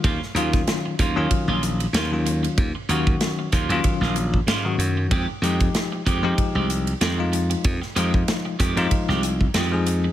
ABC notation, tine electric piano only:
X:1
M:4/4
L:1/16
Q:"Swing 16ths" 1/4=95
K:Fphr
V:1 name="Tine electric piano"
z2 [E,G,DF]4 z [E,G,DF]4 z2 [E,G,DF]3- | [E,G,DF] z [E,G,DG]4 z [E,G,DF]4 z2 [E,G,DG]3 | z2 [F,A,E=G]4 z [F,A,EG]4 z2 [F,A,EF]3- | [F,A,EF] z [F,A,EF]4 z [F,A,EF]4 z2 [F,A,EA]3 |]